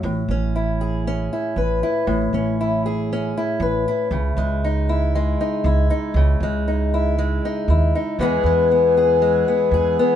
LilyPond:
<<
  \new Staff \with { instrumentName = "Steel-string acoustic guitar" } { \time 4/4 \key a \lydian \tempo 4 = 118 << { e'8 cis'8 e'8 gis'8 cis'8 e'8 b'8 e'8 | r8 cis'8 e'8 gis'8 cis'8 e'8 b'8 e'8 | r8 gis8 dis'8 e'8 gis8 dis'8 e'8 dis'8 | r8 gis8 dis'8 e'8 gis8 dis'8 e'8 dis'8 |
<e gis b gis'>8 gis8 b8 gis'8 gis8 b8 gis'8 b8 | } \\ { a,1 | a,1 | cis1 | cis1 |
e,1 | } >> }
  \new Staff \with { instrumentName = "Harmonium" } { \time 4/4 \key a \lydian r1 | r1 | r1 | r1 |
<e b gis'>1 | }
  \new Staff \with { instrumentName = "Upright bass" } { \clef bass \time 4/4 \key a \lydian a,,8 a,,2 r8 a,,8 r8 | a,,8 a,,2 r8 a,,8 r8 | cis,8 cis,2 r8 cis,8 r8 | cis,8 cis,2 r8 dis,8 r8 |
e,8 e,2 r8 e,8 r8 | }
>>